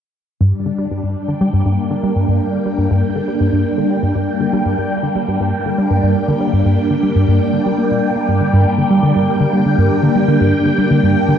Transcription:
0.41 G2 G3
0.51 D4
0.66 D3
0.79 G3
0.91 G2
1.03 G2
1.16 G5
1.28 D3
1.41 G3
1.52 G2 A#3
1.66 G2
1.91 D3
2.03 G3
2.16 G2
2.28 G2
2.53 D3
2.66 G3
2.78 G2
2.91 G2
3.16 D3
3.28 G3
3.40 G2
3.53 G2
3.78 D3
3.90 G3
4.03 G2
4.15 G2
4.41 D3
4.53 G3
4.66 G2
4.78 G2
5.03 D3
5.15 G3
5.28 G2
5.40 G2
5.66 D3
5.78 G3
5.91 G2
6.03 G2
6.28 D3
6.41 G3
6.53 G2
6.66 G2
6.91 D3
7.03 G3
7.16 G2
7.28 G2
7.53 D3
7.66 G3
7.78 A#3
7.91 A#2
8.16 A#3
8.28 G2
8.41 D3
8.53 G2
8.78 D3
8.91 G3
9.03 D3
9.16 G2
9.41 D3
9.53 G3
9.66 D3
9.78 G2
10.03 D3
10.16 G3
10.28 D3
10.41 G2
10.66 D3
10.78 G3
10.91 D3
11.03 G2
11.28 D3

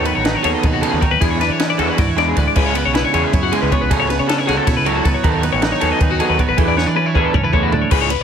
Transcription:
Already playing: D#2 D#3 F#3 D#4 A4
0.05 B3 B4, muted overdriven electric guitar stroke, ride
0.15 A1 C#5
0.24 D#4 B4, muted overdriven electric guitar stroke, snare, ride
0.35 C#5
0.44 D#2 F#3 B3 F#4 G#4 A4 C#5, ride
0.54 D#5
0.63 D#2 B2 B4, muted overdriven electric guitar stroke, kick, ride
0.73 F#4
0.82 C#3 F#3 B3 F#4 G#4 A4, ride
0.92 D#2 B4
1.01 D#3 C#5, muted overdriven electric guitar stroke, kick, ride
1.11 D#2 B4
1.21 E2 E3 B3 D4 G#4, kick, ride
1.30 C#5
1.40 D4 B4, muted overdriven electric guitar stroke, snare, ride
1.49 E3 C#5
1.59 C#4 B4, muted overdriven electric guitar stroke, snare, ride
1.68 E4 D5
1.79 E2 E3 B3 D4 F#4 G#4 A4, ride
1.89 B4
1.98 G#2 E4 D5, muted overdriven electric guitar stroke, kick, snare, ride
2.08 E2 C#5
2.16 E3 G#3 B3 D4 G#4 D5, snare, ride
2.28 G#4
2.36 D2 D4 B4, muted overdriven electric guitar stroke, kick, ride
2.48 D5
2.55 C#2 C#3 G#3 C#4 E4 G#4 B4, kick, crash
2.66 C#5
2.74 B3 B4, muted overdriven electric guitar stroke, ride
2.85 B1 C#5
2.94 E4 B4, muted overdriven electric guitar stroke, snare, ride
3.05 C#5
3.14 E2 G#3 C#4 E4 G#4 C#5, ride
3.24 E5
3.33 F#2 E4 C#5, muted overdriven electric guitar stroke, kick, ride
3.43 F#4
3.52 G#3 C#4 E4 G#4, ride
3.62 C#2 B4
3.72 B3 C#5, muted overdriven electric guitar stroke, kick, ride
3.81 B1 B4
3.90 C#2 C#3 F#3 C#4 F#4 G#4 A4, kick, ride
4.00 C#5
4.10 B3 B4, muted overdriven electric guitar stroke, snare, ride
4.19 C#3 C#5
4.27 C#4 A4, muted overdriven electric guitar stroke, snare, ride
4.38 E4 C#5
4.47 C#2 F#3 C#4 F#4 G#4 A4, snare, ride
4.57 A4
4.67 B2 E4 C#5, muted overdriven electric guitar stroke, kick, snare, ride
4.77 C#2 B4
4.86 F#3 C#4 F#4 A4 C#5, ride
4.95 F#4
5.05 C#2 B3 A4, muted overdriven electric guitar stroke, kick, ride
5.14 C#5
5.23 D#2 D#3 F#3 B3 F#4 A4 B4, kick, ride
5.34 C#5
5.43 B3 B4, muted overdriven electric guitar stroke, ride
5.53 A1 C#5
5.62 D#4 B4, muted overdriven electric guitar stroke, snare, ride
5.72 C#5
5.80 D#2 F#3 B3 F#4 G#4 A4 C#5, ride
5.92 D#5
6.00 D#2 D#4 B4, muted overdriven electric guitar stroke, kick, ride
6.10 F#4
6.20 F#3 B3 F#4 G#4 A4, ride
6.29 D#2 B4
6.39 B3 C#5, muted overdriven electric guitar stroke, kick, ride
6.48 A1 B4
6.57 E2 E3 B3 D4 G#4 A4 B4, kick, ride
6.68 D5
6.76 B3 C#5, muted overdriven electric guitar stroke, snare
6.86 E3 D4 D5
6.95 C#4 B4, muted overdriven electric guitar stroke
7.06 E4 C#5
7.15 E2 B3 D4 G#4 A4 B4, kick
7.25 A4
7.33 G#2 C#4 C#5, muted overdriven electric guitar stroke, kick, mid tom
7.44 E2 E4 B4
7.53 A3 B3 D4 G#4 B4 C#5, kick
7.63 F#4
7.72 D2 D4 A4, muted overdriven electric guitar stroke, floor tom
7.82 C#5
7.91 C#2 G#3 C#4 E4 G#4 B4, kick, crash
8.01 C#5
8.10 B4, muted overdriven electric guitar stroke, ride
8.20 B1

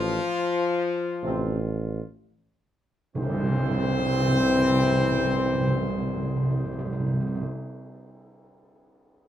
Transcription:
Already playing: A1 F3 F4
1.23 A1 C3 C4
3.15 C2 C3 E3 C4 C5, tam-tam
3.22 C3
3.29 C3
3.36 C3
3.43 C3
3.50 C3
3.57 C3
3.64 C3
3.71 C3
3.78 C3
3.85 C3
3.92 C3
3.99 C3
4.07 C3
4.14 C3
4.21 C3
4.28 C3
4.35 C3
4.41 C3
4.49 C3
4.55 C3
4.62 C3
4.70 C3
4.77 C3
4.84 C3
4.91 C3
4.97 C3
5.04 C3
5.11 C3
5.18 C3
5.25 C3
5.33 C3
5.39 C3
5.47 C3
5.53 C3
5.60 C3
5.67 C3
5.75 C3
5.81 C3
5.89 C3
5.96 C3
6.03 C3
6.09 C3
6.16 C3
6.23 C3
6.29 C3
6.36 C3
6.43 C3
6.50 C3
6.58 C3
6.65 C3
6.72 C3
6.79 C3
6.86 C3
6.93 C3
7.00 C3
7.06 C3
7.13 C3
7.21 C3
7.28 C3
7.35 C3
7.42 C3

